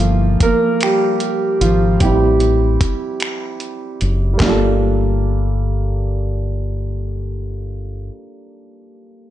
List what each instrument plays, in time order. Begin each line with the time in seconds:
Already playing: fingered electric bass G1, grand piano F3 A#3 F4 A4
0.00 closed hi-hat
0.40 grand piano A#3 A#4, muted fingered electric bass stroke, kick, closed hi-hat
0.81 grand piano G3 G4, finger snap, closed hi-hat
1.20 closed hi-hat
1.61 fingered electric bass G#1, grand piano F3 F4, closed hi-hat
2.00 fingered electric bass A1, grand piano G3 C4 E4 G4, kick, closed hi-hat
2.40 closed hi-hat
2.81 kick, closed hi-hat
3.20 finger snap, closed hi-hat
3.60 closed hi-hat
4.01 fingered electric bass F#1, closed hi-hat
4.34 grand piano G3 A#3
4.40 fingered electric bass G1, grand piano D4, kick, snare, clap
4.46 grand piano F4 A4